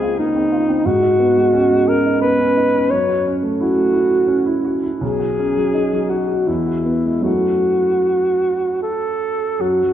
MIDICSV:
0, 0, Header, 1, 3, 480
1, 0, Start_track
1, 0, Tempo, 672646
1, 608, Time_signature, 3, 2, 24, 8
1, 1089, Tempo, 690449
1, 3009, Tempo, 719424
1, 3969, Tempo, 739827
1, 4449, Tempo, 784314
1, 5889, Tempo, 757576
1, 6593, End_track
2, 0, Start_track
2, 0, Title_t, "Alto saxophone"
2, 0, Program_c, 0, 65
2, 0, Note_on_c, 0, 68, 54
2, 131, Note_on_c, 0, 63, 52
2, 142, Note_off_c, 0, 68, 0
2, 610, Note_on_c, 0, 66, 51
2, 621, Note_off_c, 0, 63, 0
2, 1335, Note_on_c, 0, 70, 52
2, 1346, Note_off_c, 0, 66, 0
2, 1564, Note_off_c, 0, 70, 0
2, 1568, Note_on_c, 0, 71, 55
2, 2048, Note_on_c, 0, 73, 54
2, 2058, Note_off_c, 0, 71, 0
2, 2365, Note_off_c, 0, 73, 0
2, 2528, Note_on_c, 0, 66, 51
2, 3220, Note_off_c, 0, 66, 0
2, 3484, Note_on_c, 0, 68, 52
2, 4212, Note_on_c, 0, 66, 43
2, 4222, Note_off_c, 0, 68, 0
2, 4453, Note_on_c, 0, 64, 43
2, 4462, Note_off_c, 0, 66, 0
2, 4923, Note_off_c, 0, 64, 0
2, 4927, Note_on_c, 0, 66, 43
2, 5871, Note_off_c, 0, 66, 0
2, 5892, Note_on_c, 0, 69, 47
2, 6392, Note_on_c, 0, 66, 48
2, 6401, Note_off_c, 0, 69, 0
2, 6593, Note_off_c, 0, 66, 0
2, 6593, End_track
3, 0, Start_track
3, 0, Title_t, "Grand piano"
3, 0, Program_c, 1, 0
3, 0, Control_c, 1, 64, 127
3, 0, Note_on_c, 1, 37, 38
3, 0, Note_on_c, 1, 56, 30
3, 0, Note_on_c, 1, 58, 31
3, 0, Note_on_c, 1, 60, 30
3, 0, Note_on_c, 1, 65, 34
3, 15, Note_off_c, 1, 65, 0
3, 15, Note_on_c, 1, 65, 33
3, 88, Note_off_c, 1, 60, 0
3, 137, Note_off_c, 1, 58, 0
3, 137, Note_on_c, 1, 58, 36
3, 209, Note_off_c, 1, 65, 0
3, 256, Note_on_c, 1, 60, 34
3, 328, Note_off_c, 1, 58, 0
3, 372, Note_on_c, 1, 65, 37
3, 445, Note_off_c, 1, 60, 0
3, 492, Note_on_c, 1, 60, 35
3, 561, Note_off_c, 1, 65, 0
3, 583, Note_off_c, 1, 37, 0
3, 608, Note_off_c, 1, 60, 0
3, 612, Note_on_c, 1, 44, 43
3, 618, Control_c, 1, 64, 0
3, 626, Note_off_c, 1, 56, 0
3, 715, Control_c, 1, 64, 127
3, 726, Note_on_c, 1, 63, 36
3, 850, Note_on_c, 1, 59, 34
3, 918, Note_off_c, 1, 63, 0
3, 979, Note_on_c, 1, 56, 31
3, 1042, Note_off_c, 1, 59, 0
3, 1092, Note_on_c, 1, 61, 34
3, 1168, Note_off_c, 1, 56, 0
3, 1213, Note_on_c, 1, 56, 30
3, 1284, Note_off_c, 1, 61, 0
3, 1335, Note_on_c, 1, 61, 32
3, 1405, Note_off_c, 1, 56, 0
3, 1459, Note_on_c, 1, 63, 31
3, 1525, Note_off_c, 1, 61, 0
3, 1573, Note_on_c, 1, 59, 33
3, 1647, Note_off_c, 1, 63, 0
3, 1696, Note_on_c, 1, 61, 34
3, 1764, Note_off_c, 1, 59, 0
3, 1810, Note_on_c, 1, 63, 36
3, 1887, Note_off_c, 1, 61, 0
3, 1934, Note_on_c, 1, 61, 35
3, 2005, Note_off_c, 1, 63, 0
3, 2029, Note_off_c, 1, 44, 0
3, 2048, Note_on_c, 1, 42, 37
3, 2055, Note_off_c, 1, 61, 0
3, 2067, Control_c, 1, 64, 0
3, 2173, Note_on_c, 1, 66, 32
3, 2176, Control_c, 1, 64, 127
3, 2295, Note_on_c, 1, 61, 33
3, 2367, Note_off_c, 1, 66, 0
3, 2409, Note_on_c, 1, 57, 31
3, 2485, Note_off_c, 1, 61, 0
3, 2530, Note_on_c, 1, 64, 32
3, 2599, Note_off_c, 1, 57, 0
3, 2646, Note_on_c, 1, 57, 30
3, 2718, Note_off_c, 1, 64, 0
3, 2754, Note_on_c, 1, 64, 32
3, 2837, Note_off_c, 1, 57, 0
3, 2888, Note_on_c, 1, 66, 30
3, 2953, Note_off_c, 1, 64, 0
3, 2999, Note_on_c, 1, 61, 31
3, 3081, Note_off_c, 1, 66, 0
3, 3121, Note_on_c, 1, 64, 33
3, 3196, Note_off_c, 1, 61, 0
3, 3248, Note_on_c, 1, 66, 33
3, 3318, Note_off_c, 1, 64, 0
3, 3370, Note_on_c, 1, 64, 33
3, 3443, Note_off_c, 1, 66, 0
3, 3462, Note_off_c, 1, 42, 0
3, 3492, Note_off_c, 1, 64, 0
3, 3492, Note_on_c, 1, 35, 38
3, 3504, Control_c, 1, 64, 0
3, 3609, Control_c, 1, 64, 127
3, 3613, Note_on_c, 1, 66, 33
3, 3741, Note_on_c, 1, 61, 32
3, 3803, Note_off_c, 1, 66, 0
3, 3862, Note_on_c, 1, 54, 30
3, 3926, Note_off_c, 1, 61, 0
3, 3976, Note_on_c, 1, 63, 29
3, 4044, Note_off_c, 1, 54, 0
3, 4100, Note_on_c, 1, 54, 27
3, 4160, Note_off_c, 1, 63, 0
3, 4216, Note_on_c, 1, 63, 29
3, 4284, Note_off_c, 1, 54, 0
3, 4327, Note_on_c, 1, 66, 27
3, 4405, Note_off_c, 1, 63, 0
3, 4423, Note_off_c, 1, 35, 0
3, 4450, Note_off_c, 1, 66, 0
3, 4450, Note_on_c, 1, 40, 37
3, 4462, Control_c, 1, 64, 0
3, 4569, Note_on_c, 1, 66, 30
3, 4586, Control_c, 1, 64, 127
3, 4685, Note_on_c, 1, 59, 28
3, 4757, Note_off_c, 1, 66, 0
3, 4804, Note_on_c, 1, 56, 26
3, 4876, Note_off_c, 1, 59, 0
3, 4899, Note_on_c, 1, 42, 30
3, 4907, Note_on_c, 1, 54, 24
3, 4911, Note_off_c, 1, 40, 0
3, 4912, Note_on_c, 1, 57, 24
3, 4918, Note_on_c, 1, 64, 24
3, 4923, Note_on_c, 1, 66, 23
3, 4925, Note_off_c, 1, 56, 0
3, 4938, Control_c, 1, 64, 0
3, 5045, Control_c, 1, 64, 127
3, 6340, Note_off_c, 1, 42, 0
3, 6344, Note_off_c, 1, 54, 0
3, 6346, Note_off_c, 1, 57, 0
3, 6349, Note_off_c, 1, 64, 0
3, 6352, Note_off_c, 1, 66, 0
3, 6379, Note_on_c, 1, 42, 37
3, 6389, Control_c, 1, 64, 0
3, 6513, Control_c, 1, 64, 127
3, 6532, Note_on_c, 1, 54, 27
3, 6593, Note_off_c, 1, 42, 0
3, 6593, Note_off_c, 1, 54, 0
3, 6593, End_track
0, 0, End_of_file